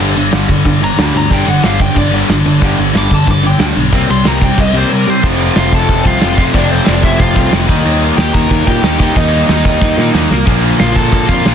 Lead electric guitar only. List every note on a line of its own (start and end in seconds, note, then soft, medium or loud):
0.84 0.99 A#5 loud
1.17 1.33 A#5 medium
1.33 1.48 G5 loud
1.48 1.64 F#5 medium
1.66 1.81 F5 medium
1.81 1.97 G5 loud
1.98 2.13 D5 loud
2.98 3.12 D6 loud
3.14 3.29 A5 medium
3.31 3.45 D6 loud
3.47 3.61 G5 loud
4.11 4.26 C6 loud
4.28 4.43 A#5 medium
4.44 4.59 G5 medium
4.60 4.75 D#5 loud
4.77 4.93 C5 medium
4.93 5.10 A#4 loud
5.10 5.25 C5 medium
5.57 5.72 F4 medium
5.57 5.75 F5 loud
5.73 6.03 A4 medium
5.73 6.04 A5 loud
6.07 6.37 F4 medium
6.07 6.37 F5 loud
6.38 6.43 F4 medium
6.38 6.43 F5 medium
6.54 6.70 D4 medium
6.54 6.70 D5 loud
6.71 6.87 C4 medium
6.71 6.88 C5 medium
6.87 7.03 D4 medium
6.87 7.04 D5 medium
7.04 7.20 E4 medium
7.04 7.19 E5 medium
7.20 7.51 F4 medium
7.20 7.51 F5 medium
8.17 8.33 G4 medium
8.17 8.34 G5 loud
8.33 8.65 A#4 medium
8.33 8.64 A#5 loud
8.67 8.98 G4 medium
8.67 8.97 G5 loud
9.00 9.16 G4 medium
9.00 9.15 G5 medium
9.17 9.48 D#4 medium
9.17 9.46 D#5 loud
9.47 10.11 D#4 medium
9.47 10.10 D#5 medium
10.80 10.95 F4 medium
10.80 10.97 F5 loud
10.96 11.27 A4 medium
10.96 11.30 A5 loud
11.28 11.55 F4 medium
11.28 11.55 F5 loud